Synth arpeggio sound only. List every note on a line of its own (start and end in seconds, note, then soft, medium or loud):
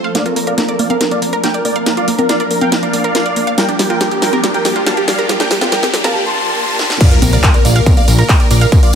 0.04 0.10 F5 loud
0.15 0.19 A#3 medium
0.26 0.29 F4 medium
0.36 0.46 A#3 medium
0.47 0.53 A#4 medium
0.58 0.64 A#3 medium
0.69 0.75 D5 medium
0.79 0.83 A#3 medium
0.90 0.96 F5 loud
1.01 1.04 A#3 medium
1.11 1.18 A#3 medium
1.22 1.31 A#3 medium
1.33 1.39 A#4 loud
1.44 1.47 A#3 loud
1.54 1.60 D5 medium
1.65 1.71 A#3 medium
1.76 1.82 F5 loud
1.86 1.90 A#3 medium
1.97 2.01 F4 medium
2.08 2.17 A#3 medium
2.19 2.25 A#4 medium
2.29 2.35 A#3 medium
2.40 2.46 D5 medium
2.51 2.54 A#3 medium
2.61 2.68 F5 loud
2.72 2.76 A#3 medium
2.83 2.89 A#3 medium
2.94 3.03 A#3 medium
3.04 3.10 A#4 loud
3.15 3.19 A#3 loud
3.26 3.32 D5 medium
3.36 3.43 A#3 medium
3.47 3.53 F5 loud
3.58 3.62 G3 medium
3.69 3.72 D4 medium
3.79 3.89 G3 medium
3.90 3.96 F4 medium
4.01 4.07 G3 medium
4.11 4.18 G4 medium
4.22 4.26 G3 medium
4.33 4.39 A#4 loud
4.44 4.47 G3 medium
4.54 4.60 G3 medium
4.65 4.74 G3 medium
4.76 4.82 F4 loud
4.86 4.90 G3 loud
4.97 5.03 G4 medium
5.08 5.14 G3 medium
5.19 5.25 A#4 loud
5.29 5.33 G3 medium
5.40 5.44 D4 medium
5.51 5.60 G3 medium
5.61 5.68 F4 medium
5.72 5.78 G3 medium
5.83 5.89 G4 medium
5.94 5.97 G3 medium
6.04 6.10 A#4 loud
7.01 7.04 A#3 medium
7.11 7.15 F4 medium
7.22 7.31 A#3 medium
7.33 7.39 A#4 medium
7.44 7.50 A#3 medium
7.54 7.60 D5 medium
7.65 7.69 A#3 medium
7.76 7.82 F5 loud
7.86 7.90 A#3 medium
7.97 8.03 A#3 medium
8.08 8.17 A#3 medium
8.19 8.25 A#4 loud
8.29 8.33 A#3 loud
8.40 8.46 D5 medium
8.51 8.57 A#3 medium
8.61 8.68 F5 loud
8.72 8.76 A#3 medium
8.83 8.87 F4 medium